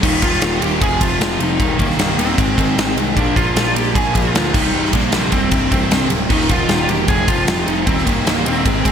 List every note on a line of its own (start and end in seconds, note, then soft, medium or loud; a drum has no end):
0.03 0.37 D#1 medium
0.03 0.22 D#2 medium
0.03 0.23 A#2 loud
0.03 0.23 D#3 loud
0.03 0.23 D#4 loud
0.03 kick loud
0.03 crash loud
0.22 0.41 D#2 medium
0.22 0.42 A#2 loud
0.22 0.42 D#3 medium
0.22 0.64 F4 medium
0.22 kick medium
0.22 ride medium
0.33 snare soft
0.42 0.59 D#1 loud
0.42 0.61 D#2 medium
0.42 0.62 A#2 loud
0.42 0.62 D#3 loud
0.42 snare loud
0.42 ride loud
0.61 0.79 D#1 medium
0.61 0.81 D#2 medium
0.61 0.81 A#2 medium
0.61 0.81 D#3 medium
0.61 0.81 G4 medium
0.61 ride medium
0.81 0.98 F1 loud
0.81 1.00 F2 loud
0.81 1.01 C3 loud
0.81 1.01 F3 loud
0.81 1.01 G#4 loud
0.81 kick loud
0.81 ride loud
1.01 1.18 F1 medium
1.01 1.20 F2 medium
1.01 1.21 C3 medium
1.01 1.21 F3 medium
1.01 1.40 F4 loud
1.01 kick loud
1.01 ride loud
1.19 1.37 F1 loud
1.19 1.40 F2 medium
1.19 1.40 C3 medium
1.19 1.40 F3 medium
1.19 snare loud
1.19 ride loud
1.39 1.57 F1 medium
1.39 1.59 F2 medium
1.39 1.59 C3 medium
1.39 1.59 F3 medium
1.39 1.77 D#4 loud
1.39 ride medium
1.60 1.77 D#1 loud
1.60 1.79 D#2 medium
1.60 1.79 A#2 loud
1.60 1.80 D#3 loud
1.60 kick loud
1.60 ride medium
1.78 1.96 C1 medium
1.78 1.97 D#2 loud
1.78 1.98 A#2 medium
1.78 1.98 D#3 loud
1.78 2.18 A#3 loud
1.78 kick medium
1.78 ride medium
1.90 snare soft
1.97 2.15 C1 loud
1.97 2.17 D#2 medium
1.97 2.18 A#2 loud
1.97 2.18 D#3 loud
1.97 snare loud
1.97 ride loud
2.17 2.35 D#1 medium
2.17 2.37 D#2 medium
2.17 2.37 A#2 medium
2.17 2.37 D#3 medium
2.17 2.93 C4 loud
2.17 ride medium
2.38 2.55 G#1 loud
2.38 2.56 G#2 loud
2.38 2.56 D#3 loud
2.38 2.57 G#3 loud
2.38 kick loud
2.38 ride loud
2.57 2.75 G#1 medium
2.57 2.75 G#2 medium
2.57 2.76 D#3 loud
2.57 2.77 G#3 loud
2.57 kick loud
2.57 ride medium
2.77 2.94 G#1 loud
2.77 2.96 G#2 medium
2.77 2.97 D#3 medium
2.77 2.97 G#3 medium
2.77 snare loud
2.77 ride medium
2.97 3.16 C2 medium
2.97 3.16 G#2 medium
2.97 3.16 D#3 loud
2.97 3.16 G#3 loud
2.97 ride medium
3.16 3.50 A#1 loud
3.16 3.35 A#2 loud
3.16 3.35 F3 loud
3.16 3.36 A#3 loud
3.16 3.36 D4 loud
3.16 kick loud
3.16 ride medium
3.36 3.54 A#2 loud
3.36 3.54 F3 medium
3.36 3.54 A#3 loud
3.36 3.76 F4 loud
3.36 kick loud
3.36 ride medium
3.55 3.73 A#1 loud
3.55 3.73 A#2 medium
3.55 3.74 F3 loud
3.55 3.75 A#3 loud
3.55 snare loud
3.55 ride loud
3.75 3.92 A#1 medium
3.75 3.93 A#2 medium
3.75 3.93 F3 medium
3.75 3.94 A#3 loud
3.75 3.95 G4 medium
3.75 ride medium
3.94 4.12 A#1 loud
3.94 4.12 A#2 loud
3.94 4.13 F3 loud
3.94 4.13 A#3 loud
3.94 4.15 G#4 loud
3.94 kick loud
3.94 ride loud
4.14 4.32 A#1 medium
4.14 4.33 A#2 medium
4.14 4.33 F3 medium
4.14 4.33 A#3 medium
4.14 4.53 F4 loud
4.14 kick loud
4.14 ride medium
4.34 4.51 D2 loud
4.34 4.53 A#2 medium
4.34 4.53 F3 medium
4.34 4.53 A#3 medium
4.34 snare loud
4.34 ride loud
4.53 4.71 C1 medium
4.53 4.72 C2 loud
4.53 4.72 G2 loud
4.53 4.73 C3 loud
4.53 4.94 D#4 loud
4.53 kick loud
4.53 crash loud
4.73 4.91 C1 loud
4.73 4.92 C2 medium
4.73 4.92 G2 loud
4.73 4.92 C3 loud
4.85 snare soft
4.93 5.10 A#1 medium
4.93 5.11 C2 medium
4.93 5.12 G2 medium
4.93 5.12 C3 loud
4.93 5.32 A#3 loud
4.93 kick medium
4.93 ride medium
5.12 5.30 A#1 loud
5.12 5.31 C2 medium
5.12 5.31 G2 medium
5.12 5.32 C3 loud
5.12 snare loud
5.12 ride loud
5.32 5.49 C1 loud
5.32 5.51 C2 medium
5.32 5.51 G2 medium
5.32 5.52 C3 medium
5.32 6.07 C4 medium
5.32 kick medium
5.32 ride medium
5.51 5.69 C1 loud
5.51 5.70 C2 loud
5.51 5.70 G2 loud
5.51 5.71 C3 loud
5.51 kick loud
5.51 ride loud
5.71 5.88 C1 medium
5.71 5.90 C2 medium
5.71 5.90 G2 medium
5.71 5.91 C3 medium
5.71 kick loud
5.71 ride medium
5.91 6.08 C1 loud
5.91 6.10 C2 medium
5.91 6.10 G2 medium
5.91 6.10 C3 medium
5.91 snare loud
5.91 ride loud
6.10 6.27 D1 medium
6.10 6.29 C2 medium
6.10 6.29 G2 medium
6.10 6.29 C3 loud
6.10 ride medium
6.30 6.64 D#1 medium
6.30 6.48 D#2 medium
6.30 6.49 A#2 loud
6.30 6.49 D#3 loud
6.30 6.51 D#4 loud
6.30 kick loud
6.30 crash loud
6.40 snare soft
6.49 6.67 D#2 medium
6.49 6.68 A#2 loud
6.49 6.68 D#3 medium
6.49 6.91 F4 loud
6.49 kick medium
6.49 ride medium
6.68 6.86 D#1 loud
6.68 6.87 D#2 medium
6.68 6.88 A#2 loud
6.68 6.88 D#3 loud
6.68 snare loud
6.68 ride medium
6.88 7.08 E1 medium
6.88 7.07 D#2 medium
6.88 7.07 A#2 loud
6.88 7.07 D#3 loud
6.88 7.08 G4 medium
6.88 ride medium
7.07 7.25 F1 loud
7.07 7.26 F2 loud
7.07 7.26 C3 loud
7.07 7.27 F3 loud
7.07 7.28 G#4 loud
7.07 kick loud
7.07 ride loud
7.27 7.45 F1 medium
7.27 7.46 F2 medium
7.27 7.47 C3 medium
7.27 7.47 F3 loud
7.27 7.66 F4 medium
7.27 kick loud
7.27 ride medium
7.47 7.64 F1 loud
7.47 7.66 F2 medium
7.47 7.66 C3 medium
7.47 7.66 F3 medium
7.47 snare loud
7.47 ride loud
7.67 7.84 F1 medium
7.67 7.85 F2 medium
7.67 7.86 C3 loud
7.67 7.86 F3 loud
7.67 7.85 D#4 medium
7.67 ride medium
7.85 8.04 D#1 loud
7.85 8.04 D#2 loud
7.85 8.05 A#2 medium
7.85 8.05 D#3 loud
7.85 8.06 C4 loud
7.85 kick loud
7.85 ride loud
7.98 snare soft
8.06 8.23 C1 medium
8.06 8.24 D#2 medium
8.06 8.25 A#2 loud
8.06 8.25 D#3 loud
8.06 8.46 A#3 medium
8.06 kick medium
8.06 ride medium
8.25 8.43 C1 medium
8.25 8.44 D#2 medium
8.25 8.45 A#2 loud
8.25 8.45 D#3 loud
8.25 snare loud
8.25 ride loud
8.45 8.63 D#1 medium
8.45 8.64 D#2 medium
8.45 8.64 A#2 medium
8.45 8.64 D#3 loud
8.45 8.92 C4 medium
8.45 ride medium
8.65 8.82 G#1 loud
8.65 8.83 G#2 loud
8.65 8.83 D#3 loud
8.65 8.84 G#3 loud
8.65 kick loud
8.65 ride loud
8.84 8.92 G#1 medium
8.84 8.92 G#2 medium
8.84 8.92 D#3 medium
8.84 8.92 G#3 medium
8.84 kick loud
8.84 ride medium